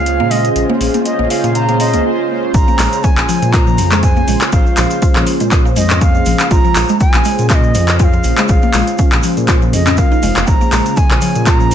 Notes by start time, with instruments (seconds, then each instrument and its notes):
Already playing: analog synth bass C#2, ambient pad C#3 G#3 A#3 G#4, bansuri F5
0.06 analog polysynth C#4 F4 G#4 C5, closed hi-hat, mid tom
0.19 analog synth bass A#2, synth pluck A#3, mid tom
0.31 synth pluck G#3, bansuri D#5, open hi-hat, mid tom
0.45 closed hi-hat, mid tom
0.55 analog synth bass A#1, analog polysynth C#4 F4 G#4 C5, closed hi-hat, mid tom
0.63 mid tom
0.69 synth pluck A#3, mid tom
0.75 mid tom
0.81 analog synth bass A#1, analog polysynth C#4 F4 G#4 C5, open hi-hat, mid tom
0.87 mid tom
0.94 synth pluck A#3, closed hi-hat, mid tom
1.00 mid tom
1.05 analog polysynth C#4 F4 G#4 C5, bansuri D#5, closed hi-hat, mid tom
1.12 mid tom
1.19 analog synth bass A#1, synth pluck A#3, mid tom
1.25 mid tom
1.30 analog polysynth C#4 F4 G#4 C5, bansuri F5, open hi-hat, mid tom
1.37 mid tom
1.44 analog synth bass A#2, synth pluck A#3, closed hi-hat, mid tom
1.49 mid tom
1.55 analog polysynth C#4 F4 G#4 C5, bansuri A#5, closed hi-hat, mid tom
1.62 mid tom
1.69 synth pluck A#3, closed hi-hat, mid tom
1.74 mid tom
1.80 analog polysynth C#4 F4 G#4 C5, bansuri D#5, open hi-hat, mid tom
1.87 mid tom
1.93 analog synth bass C#2, synth pluck A#3, closed hi-hat, mid tom
1.99 mid tom
2.05 analog polysynth C#4 F4 G#4 C5, high tom
2.18 high tom
2.30 analog polysynth C#4 F4 G#4 C5, mid tom
2.43 mid tom
2.54 analog synth bass A#1, ambient pad C#3 G#3 A#3 F4, analog polysynth C#4 F4 G#4 C5, bansuri A#5, kick, closed hi-hat, shaker
2.68 synth pluck A#3, shaker
2.79 analog synth bass A#1, synth pluck G#3, clap, open hi-hat, shaker
2.93 closed hi-hat, shaker
3.03 synth pluck C#4, bansuri G#5, kick, closed hi-hat, shaker
3.17 analog synth bass A#1, clap, shaker
3.29 synth pluck F3, open hi-hat, shaker
3.42 analog synth bass A#2, closed hi-hat, shaker
3.53 synth pluck F4, bansuri A#5, kick, clap, closed hi-hat, mid tom, shaker
3.67 synth pluck F3, shaker
3.78 analog synth bass F2, open hi-hat, shaker
3.92 synth pluck G#3, clap, closed hi-hat, shaker
4.02 analog polysynth C#4 F4 G#4 C5, bansuri G#5, kick, closed hi-hat, mid tom, shaker
4.16 synth pluck A#3, shaker
4.28 analog synth bass A#1, synth pluck G#3, open hi-hat, shaker
4.41 clap, closed hi-hat, shaker
4.52 analog synth bass A#1, analog polysynth C#4 F4 G#4 C5, synth pluck C#4, bansuri F5, kick, closed hi-hat, shaker
4.66 shaker
4.77 analog synth bass A#1, synth pluck F3, clap, open hi-hat, shaker
4.91 closed hi-hat, shaker
5.02 synth pluck F4, kick, closed hi-hat, shaker
5.16 analog synth bass A#1, synth pluck F3, clap, shaker
5.27 open hi-hat, shaker
5.40 analog synth bass A#2, synth pluck G#3, closed hi-hat, shaker
5.51 kick, clap, closed hi-hat, shaker
5.65 synth pluck A#3, shaker
5.76 analog synth bass F2, synth pluck G#3, bansuri D#5, open hi-hat, shaker
5.90 clap, closed hi-hat, mid tom, shaker
6.01 analog polysynth C#4 F4 G#4 C5, synth pluck C#4, bansuri F5, kick, closed hi-hat, shaker
6.14 shaker
6.26 analog synth bass A#1, synth pluck F3, open hi-hat, shaker
6.40 clap, closed hi-hat, shaker
6.51 analog synth bass A#1, analog polysynth C#4 F4 G#4 C5, synth pluck F4, bansuri A#5, kick, closed hi-hat, shaker
6.65 synth pluck F3, shaker
6.75 analog synth bass A#1, clap, open hi-hat, shaker
6.88 synth pluck G#3, closed hi-hat, shaker
7.00 bansuri G#5, kick, closed hi-hat, shaker
7.14 analog synth bass A#1, synth pluck A#3, clap, shaker
7.24 synth pluck G#3, open hi-hat, shaker
7.38 analog synth bass A#2, closed hi-hat, shaker
7.50 synth pluck C#4, bansuri F5, kick, clap, closed hi-hat, mid tom, shaker
7.55 bansuri D#5
7.63 shaker
7.75 analog synth bass F2, synth pluck F3, open hi-hat, shaker
7.87 clap, closed hi-hat, shaker
7.99 analog polysynth C#4 F4 G#4 C5, synth pluck F4, bansuri G#5, kick, closed hi-hat, mid tom, shaker
8.04 bansuri F5
8.13 synth pluck F3, shaker
8.24 analog synth bass A#1, open hi-hat, shaker
8.37 synth pluck G#3, clap, closed hi-hat, shaker
8.48 analog synth bass A#1, analog polysynth C#4 F4 G#4 C5, bansuri F5, kick, closed hi-hat, shaker
8.62 synth pluck A#3, shaker
8.74 analog synth bass A#1, synth pluck G#3, clap, open hi-hat, shaker
8.87 closed hi-hat, shaker
8.98 synth pluck C#4, kick, closed hi-hat, shaker
9.12 analog synth bass A#1, clap, shaker
9.23 synth pluck F3, open hi-hat, shaker
9.37 analog synth bass A#2, closed hi-hat, shaker
9.48 synth pluck F4, kick, clap, closed hi-hat, shaker
9.62 synth pluck F3, shaker
9.73 analog synth bass F2, bansuri D#5, open hi-hat, shaker
9.86 synth pluck C#4, clap, closed hi-hat, mid tom, shaker
9.97 analog synth bass C#2, analog polysynth C#4 F4 G#4 C5, synth pluck A#4, bansuri F5, kick, closed hi-hat, shaker
10.12 synth pluck D#4, shaker
10.23 analog synth bass F1, synth pluck G#3, open hi-hat, shaker
10.36 analog synth bass F1, clap, closed hi-hat, shaker
10.47 analog synth bass A#1, analog polysynth C#4 F4 G#4 C5, ambient pad G#4, bansuri A#5, kick, closed hi-hat, shaker
10.61 synth pluck A#3, shaker
10.72 analog synth bass A#1, synth pluck G#3, clap, open hi-hat, shaker
10.86 closed hi-hat, shaker
10.96 synth pluck C#4, bansuri G#5, kick, closed hi-hat, shaker
11.10 analog synth bass A#1, clap, shaker
11.21 synth pluck F3, open hi-hat, shaker
11.35 analog synth bass A#2, closed hi-hat, shaker
11.46 synth pluck F4, bansuri A#5, kick, clap, closed hi-hat, mid tom, shaker
11.60 synth pluck F3, shaker
11.71 analog synth bass F2, open hi-hat